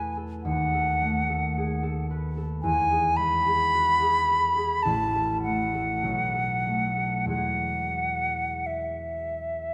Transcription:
Already playing: E2 A3 A4 B4 G#5
0.17 A4
0.43 D#2 F#5
0.73 A4
1.02 A3
1.29 A4
1.57 G#4
1.83 A4
2.10 B4
2.37 A4
2.62 E2 G#5
2.91 G#4
3.17 G#3 B5
3.46 G#4
3.74 F#4
4.01 G#4
4.28 A4
4.56 G#4
4.83 A1 A5
5.15 A4
5.44 A3 F#5
5.74 A4
6.03 B1
6.35 A4
6.66 A3
6.97 A4
7.25 E2 G#3 G#4 B4 F#5
8.66 E5

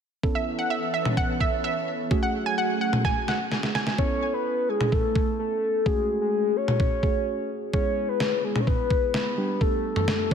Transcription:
0.23 E3 B3 C#4 E4 A4, kick
0.35 E5
0.59 F#5
0.70 E5
0.94 E5
1.05 mid tom
1.17 F#5, kick
1.40 E5, kick
1.64 E5
2.11 F#3 A3 C#4 F#4 G#4, kick
2.23 F#5
2.46 G#5
2.58 F#5
2.81 F#5
2.93 mid tom
3.05 G#5, kick, snare
3.28 F#5, snare
3.52 snare
3.63 snare
3.75 G#5, snare
3.87 snare
3.98 B3 C#4 E4 A4 C#5, kick
4.33 B4
4.69 G#4
4.81 mid tom
4.92 A4, kick
5.15 kick
5.39 A4
5.86 A3 C#4 F#4 G#4, kick
6.21 G#4
6.56 C#5
6.68 mid tom
6.80 kick
7.03 A3 C#4 F#4 G#4, kick
7.73 G#3 B3 E4 G#4 C#5, kick
8.09 B4
8.20 snare
8.44 G#4
8.56 mid tom
8.60 C#5
8.67 B4, kick
8.90 kick
9.14 B4, snare
9.38 G3 B3 D4 G4
9.61 A4, kick
9.96 A4, mid tom
10.08 snare

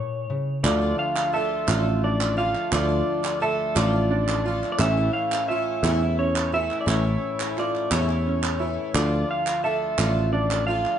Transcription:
Already playing: A#2 E4 C#5
0.30 C#3
0.63 D2 D3 F3 A3 D4 F4 A4 D5, clap
0.81 A3 D4 F4
0.99 F5
1.16 A3 D4 F4, clap
1.33 D3 A3 D4 F4 A4 E5
1.67 A1 D3 F3 A3 D4 F4 A4 D5, clap
1.86 A3 D4 F4
2.03 D4 D5
2.20 A3 D4 F4, clap
2.37 D3 A3 D4 F4 F5
2.55 clap
2.71 D2 D3 F3 A3 D4 F4 A4 D5, clap
2.89 A3 D4 F4
3.23 A3 D4 F4, clap
3.40 D3 A3 D4 F4 A4 E5
3.74 A1 D3 F3 A3 D4 F4 A4 D5, clap
3.93 A3 D4 F4
4.11 D4
4.28 A3 D4 F4, clap
4.45 D3 A3 D4 F4
4.63 clap
4.72 D5
4.78 A1 A2 E3 A3 C#4 E4 C#5 E5, clap
4.97 A3 C#4 E4
5.13 F5
5.32 A3 C#4 E4, clap
5.48 A3 C#4 F4 E5
5.52 E4
5.83 E2 A2 E3 A3 C#4 E4 C#5 G5, clap
6.01 A3 C#4 E4
6.19 C#4 C#5
6.36 A3 C#4 E4, clap
6.52 E3 A3 C#4 E4 E5
6.71 clap
6.81 D5
6.86 A1 A2 E3 A3 C#4 E4 C#5 E5, clap
7.03 A3 C#4 E4
7.39 A3 C#4 E4, clap
7.57 A3 E4 F4 D5, clap
7.75 clap
7.90 E2 A2 E3 A3 C#4 E4 C#5 E5, clap
8.07 A3 C#4 E4, clap
8.27 C#4
8.42 A3 C#4 E4, clap
8.59 E3 A3 C#4 E4
8.93 D2 D3 F3 A3 D4 F4 A4 D5, clap
9.13 A3 D4 F4
9.31 F5
9.46 A3 D4 F4, clap
9.64 D3 A3 D4 F4 A4 E5
9.98 A1 D3 F3 A3 D4 F4 A4 D5, clap
10.16 A3 D4 F4
10.33 D4 D5
10.50 A3 D4 F4, clap
10.67 D3 A3 D4 F4 F5
10.86 clap

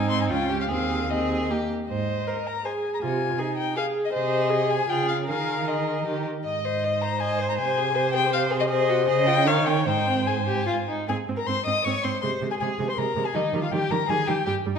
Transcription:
Already playing: G#2 C4 D#4
0.10 C6
0.21 G#5
0.30 C#2 C#4 F4 G5
0.49 G4
0.61 F5
0.68 D#2 C4 G#4 F5
1.10 C4 G#4 D#5
1.50 A#3 G4
1.89 G#2 C5 D#5
2.27 A#4 C5
2.47 A#5
2.65 G#4 C5 G#5
2.94 A#5
3.02 C3 F4 G#5
3.38 D#4 G#4
3.57 G5
3.75 G#4 F5
4.05 D#5
4.13 C3 G#4 C5 D#5
4.50 G#4
4.70 G#5
4.88 C#3 F4 G#4 G5
5.08 F5
5.28 D#3 G#4 A#4 F5
5.67 G#4 D#5
6.06 D#3 G4
6.44 G#2 D#5
6.65 C5
6.83 C5 D#5
7.01 C5 A#5
7.20 D#5 G#5
7.39 C5
7.50 A#5
7.58 C3 C5 G#5
7.77 G#4
7.95 C5
8.14 G#4 G5
8.32 C5 F5
8.51 G#4
8.60 D#5
8.69 G#4 C5 D#5
8.89 F#4
9.07 C#3 G#4 D#5
9.27 F4 G5
9.46 D#3 D#4 C#5 F5
9.66 C#4 G5
9.86 G#2 D#4 C5 G5
10.07 C4
10.26 G#4 G#5
10.47 G4
10.67 F4
10.88 D#4
11.08 G#2 C4 G#4 G#5
11.28 G#2 C4
11.36 A#4 A#5
11.46 G#2 C4 C5 C6
11.66 G#2 C4 D#5 D#6
11.84 G#2 C4 C#5 C#6
12.03 G#2 C4 C5 C6
12.22 C3 G#3 C5 C6
12.41 C3 G#3
12.51 G#4 G#5
12.60 C3 G#3 G#4 G#5
12.79 C3 G#3
12.88 C5 C6
12.96 C3 G#3 A#4 A#5
13.16 C3 G#3
13.25 G#4 G#5
13.34 D#3 G3 D#4 D#5
13.53 D#3 G3
13.62 F4 F5
13.71 D#3 G3 G4 G5
13.91 D#3 G3 A#4 A#5
14.09 D#3 G3 G#4 G#5
14.27 D#3 G3 G4 G5
14.45 G2 G3 G4 G5
14.66 G2 G3
14.76 D#4

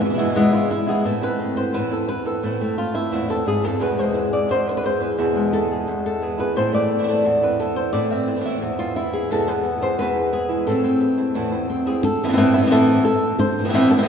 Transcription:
0.01 B2 E3 G#3 B3 E4, muted nylon-string guitar stroke
0.05 E3 G#3 B3 E4
0.09 B2 E3 G#3 B3 E4
0.14 B2 E3 G#3 B3 E4
0.18 E2 B2 E3 G#3 B3 E4
0.35 E2 B2 E3 G#3 B3 E4, muted nylon-string guitar stroke
0.52 E3 G#3 B3 E4 F4
0.70 E3 G#3 B3 E4, muted nylon-string guitar stroke
0.87 E3 G#3 B3 E4 G#4
1.04 A2 E3 B3 C4 E4 A4
1.21 A3 B3 C4 E4 B4
1.39 C4, muted nylon-string guitar stroke
1.56 B3 C4 E4 C5
1.73 E2 A2 E3 B3 C4 E4 B4
1.90 B3 C4 E4 A4
2.08 B4, muted nylon-string guitar stroke
2.25 B3 C4 E4 A4
2.43 A2 E3 B3 C4 E4
2.60 A3 B3 C4 E4
2.77 F4, muted nylon-string guitar stroke
2.94 B3 C4 E4
3.11 E2 A2 E3 B3 C4 E4
3.29 B3 C4 E4 A4
3.45 G#2 G#4, muted nylon-string guitar stroke
3.62 F2 B3 C4 E4 A4
3.79 E2 B2 E3 G#3 B3 E4 B4
3.98 G#3 C5
4.14 E3 G#3 B3 E4
4.33 D5
4.49 E2 C5, muted nylon-string guitar stroke
4.67 B4 C5
4.77 B4
4.83 E3 G#3 B3 E4 C5
5.00 E3 G#3 B3 E4 B4
5.18 E2 B2 E3 G#3 B3 E4
5.36 G#3
5.52 E3 G#3 B3 E4 A4
5.71 G#4
5.87 E2, muted nylon-string guitar stroke
6.06 A4
6.21 E3 G#3 B3 E4 G#4
6.38 E3 G#3 B3 E4 B4
6.55 A2 E3 B3 C4 E4 C5
6.73 A3 D5
6.90 B3 C4 E4
6.98 E3 B3 C4 E4
7.03 E3 B3 C4 E4
7.07 A2 E3 B3 C4 E4 A4
7.25 E2, muted nylon-string guitar stroke
7.41 B3 C4 E4 B4
7.59 E3 B3 C4 E4 A4
7.76 C5
7.93 A2 E3 C4 E4 D5
8.10 C4 E5
8.27 B3 C4 E4
8.36 E3 B3 C4 E4
8.40 E3 B3 C4 E4
8.45 A2 E3 B3 C4 E4 E5
8.61 E2, muted nylon-string guitar stroke
8.78 B3 C4 E4 F4
8.95 E3 C4 E4
9.13 G#4
9.30 E2 B2 E3 G#3 B3 E4 A4
9.47 E3 G#3 B3 E4 B4
9.64 muted nylon-string guitar stroke
9.81 E3 G#3 B3 E4 C5
9.98 E2 B2 E3 G#3 B3 E4 B4
10.15 E3 G#3 B3 E4
10.32 G#4, muted nylon-string guitar stroke
10.49 E3 G#3 B3 E4
10.66 A2 E3 A3 C4 E4 A4
10.83 A3 C4 E4
11.00 muted nylon-string guitar stroke
11.18 A3 C4 E4
11.34 E2 A2 E3 A3 C4 E4
11.52 A3 C4 E4
11.69 C4, muted nylon-string guitar stroke
11.86 A3 C4 E4 G#4
12.03 A4, muted nylon-string guitar stroke
12.23 E3 B3 C4 E4
12.28 E3 B3 C4 E4
12.32 E3 B3 C4 E4
12.37 A2 E3 B3 C4 E4 B4
12.54 E3 B3 C4 E4
12.58 E3 B3 C4 E4
12.62 E3 B3 C4 E4
12.67 A2 B3 C4 E4
12.71 E3 B3 C4 E4 A4
12.87 B3 C4 E4
13.04 A4, muted nylon-string guitar stroke
13.39 C5, muted nylon-string guitar stroke
13.59 E3 B3 C4 E4
13.63 E3 B3 C4 E4
13.68 E3 B3 C4 E4
13.72 A2 E3 B3 C4 E4
13.89 E3 B3 C4 E4 A4
13.94 E3 B3 C4 E4
13.98 E3 B3 E4
14.03 C4 E4

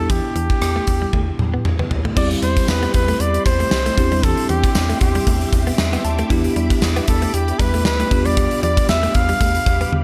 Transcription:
Already playing: E2 B3 D4 E4 G4 A4
0.10 E3 G4, kick, closed hi-hat
0.24 muted clean electric guitar stroke
0.35 E2 E3, closed hi-hat
0.50 kick
0.61 E2, cross-stick, closed hi-hat
0.76 A3
0.87 E2, muted clean electric guitar stroke, kick, closed hi-hat
1.02 G3
1.13 E2 A3, kick, high tom
1.39 E2, muted clean electric guitar stroke, mid tom
1.54 B3
1.65 E2, mid tom
1.79 B3, mid tom
1.91 D#2, muted clean electric guitar stroke, floor tom
2.05 A3, floor tom
2.15 E2 G3 C4 E4 G4 D5 E5 B5 C6, kick, crash
2.31 muted clean electric guitar stroke, closed hi-hat
2.42 E2 G3 C5, closed hi-hat
2.57 kick, closed hi-hat
2.68 E2 B4, snare, tambourine
2.83 B3, closed hi-hat
2.94 E2 B4, muted clean electric guitar stroke, kick, closed hi-hat
3.08 A3, closed hi-hat
3.20 E2 D5, muted clean electric guitar stroke, closed hi-hat
3.34 closed hi-hat
3.46 E2 G3 C5, kick, closed hi-hat
3.60 A3, closed hi-hat
3.71 C2, snare, tambourine
3.86 A3, closed hi-hat
3.96 E2 C4 D4 E4 G4 D6, muted clean electric guitar stroke, kick, closed hi-hat
4.12 G3, closed hi-hat
4.23 E3 A4, kick, closed hi-hat
4.37 muted clean electric guitar stroke, closed hi-hat
4.49 E2 E3 G4, closed hi-hat
4.64 kick, closed hi-hat
4.75 E2, snare, tambourine
4.89 A3, closed hi-hat
5.01 E2 G4, muted clean electric guitar stroke, kick, closed hi-hat
5.15 G3, closed hi-hat
5.27 E2 A3, kick, closed hi-hat
5.41 closed hi-hat
5.53 E2, muted clean electric guitar stroke, kick, closed hi-hat
5.67 B3, closed hi-hat
5.78 E2 E5, snare, tambourine
5.93 B3, closed hi-hat
6.05 D#2 A5, muted clean electric guitar stroke, closed hi-hat
6.19 A3, closed hi-hat
6.30 E2 E3 B3 D4 E4 G4 B5, kick, closed hi-hat
6.44 muted clean electric guitar stroke, closed hi-hat
6.56 E2 G3, closed hi-hat
6.70 kick, closed hi-hat
6.82 E2, snare, tambourine
6.96 B3, closed hi-hat
7.08 E2 A4, muted clean electric guitar stroke, kick, closed hi-hat
7.22 A3, closed hi-hat
7.34 E2 G4, muted clean electric guitar stroke, closed hi-hat
7.48 closed hi-hat
7.59 E2 G3 B4, kick, closed hi-hat
7.74 A3, closed hi-hat
7.85 D2 B4, snare, tambourine
8.00 A3, closed hi-hat
8.10 E2 B3 D4 F4 G4 F5, muted clean electric guitar stroke, kick, closed hi-hat
8.25 G3 D5, closed hi-hat
8.37 G3, kick, closed hi-hat
8.51 muted clean electric guitar stroke, closed hi-hat
8.63 E2 F3 D5, closed hi-hat
8.77 kick, closed hi-hat
8.89 E2 E5, snare, tambourine
9.03 A3, closed hi-hat
9.14 E2 F5, muted clean electric guitar stroke, kick, closed hi-hat
9.29 G3, closed hi-hat
9.41 E2 A3, kick, closed hi-hat
9.55 closed hi-hat
9.66 E2, muted clean electric guitar stroke, kick, closed hi-hat
9.81 B3, closed hi-hat
9.92 E2, high tom

